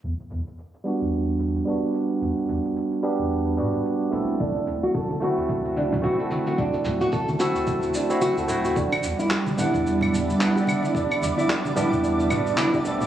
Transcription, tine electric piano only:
X:1
M:4/4
L:1/16
Q:"Swing 16ths" 1/4=110
K:Em
V:1 name="Tine electric piano"
z6 [G,B,DF]6 [G,B,DF]4- | [G,B,DF]6 [G,B,DG]4 [G,B,DF]4 [A,CEA]2- | [A,CEA]6 [A,CEF]6 [A,CEF]4- | [A,CEF]6 [A,CEA]4 z [A,CEF]3 [A,CEF] z |
z6 [G,B,Df]6 [G,B,Df]4- | [G,B,Df]6 [G,B,DG]4 [G,B,DF]4 [A,CEA]2 |]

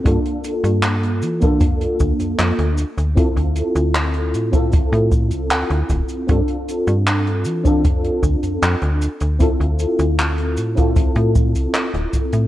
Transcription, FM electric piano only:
X:1
M:4/4
L:1/16
Q:1/4=77
K:Dm
V:1 name="FM electric piano"
[B,DFA]6- [B,DFA] [B,DFA]6- [B,DFA] z2 | [CEFA]6- [CEFA] [CEFA]8- [CEFA] | [CDFA]6- [CDFA] [CDFA]6- [CDFA] z2 | [CEFA]6- [CEFA] [CEFA]8- [CEFA] |]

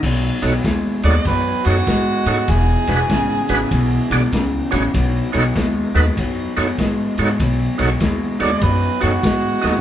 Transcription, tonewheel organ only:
X:1
M:4/4
L:1/16
Q:"Swing" 1/4=98
K:Bmix
V:1 name="Tonewheel organ"
z2 [DFAc] z3 [DFAc] z3 [DFAc] z3 [DFAc] z | z2 [=DFGB] z3 [DFGB] z3 [DFG=d] z3 [DFGc] z | z2 [DFAc] z3 [DFAB] z3 [DFAc] z3 [DFAc] z | z2 [DFAc] z3 [DFAc] z3 [DFAc] z3 [DFAd] z |]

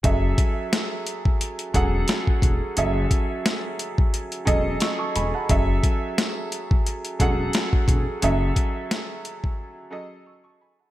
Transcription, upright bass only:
X:1
M:4/4
L:1/16
Q:"Swing 16ths" 1/4=88
K:F#dor
V:1 name="Upright bass" clef=bass
F,,,2 z8 E,,,2 z2 E,,, z | F,,,2 z8 E,,,2 z2 E,,, z | F,,,2 z8 E,,,2 z2 E,,, z | F,,,2 z12 z2 |]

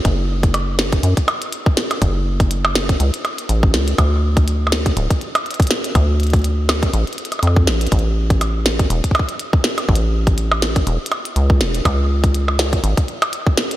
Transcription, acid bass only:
X:1
M:4/4
L:1/8
Q:"Swing 16ths" 1/4=122
K:C#phr
V:1 name="Acid bass" clef=bass
F,,,4 F,, z3 | F,,,4 C,, z A,,, C,, | D,,4 D,,, z3 | D,,4 A,,, z =F,, A,,, |
A,,,4 E,,, z3 | A,,,4 E,,, z C,, E,,, | C,,4 G,,, z3 |]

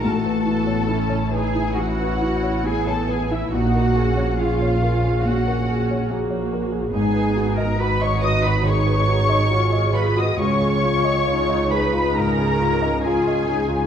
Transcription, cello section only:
X:1
M:4/4
L:1/16
Q:1/4=69
K:G#dor
V:1 name="Cello section"
=A6 G2 F4 G A G =E | F4 E4 F4 z4 | G3 A B c d B c6 B d | c6 B2 A4 G4 |]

